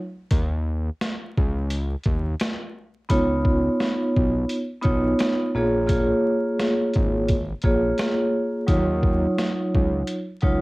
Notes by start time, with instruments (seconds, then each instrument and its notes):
0.31 analog synth bass D#2, kick, closed hi-hat
1.01 snare, closed hi-hat
1.37 analog synth bass C#2, kick
1.70 closed hi-hat
2.04 analog synth bass D#2, kick, closed hi-hat
2.40 snare, closed hi-hat
3.09 analog synth bass C#2, vibraphone B3 D#4 F4 C#5, kick, closed hi-hat
3.45 kick
3.80 snare, closed hi-hat
4.17 analog synth bass B1, kick
4.49 closed hi-hat
4.81 analog synth bass B1, vibraphone B3 D#4 F4 C#5, kick, closed hi-hat
5.19 snare, closed hi-hat
5.55 analog synth bass A#1, vibraphone A#3 F4 G#4 C#5
5.86 vibraphone A#3 F4 G#4 C#5, kick, closed hi-hat
6.59 snare, closed hi-hat
6.93 analog synth bass G#1, kick, closed hi-hat
7.28 kick, closed hi-hat
7.62 analog synth bass A#1, vibraphone A#3 F4 G#4 C#5, kick, closed hi-hat
7.98 snare, closed hi-hat
8.67 analog synth bass D#2, vibraphone F#3 D#4 F4 C#5, kick, closed hi-hat
9.03 kick
9.38 snare, closed hi-hat
9.75 analog synth bass C#2, kick
10.07 closed hi-hat
10.41 analog synth bass C#2, vibraphone F#3 D#4 F4 C#5, kick, closed hi-hat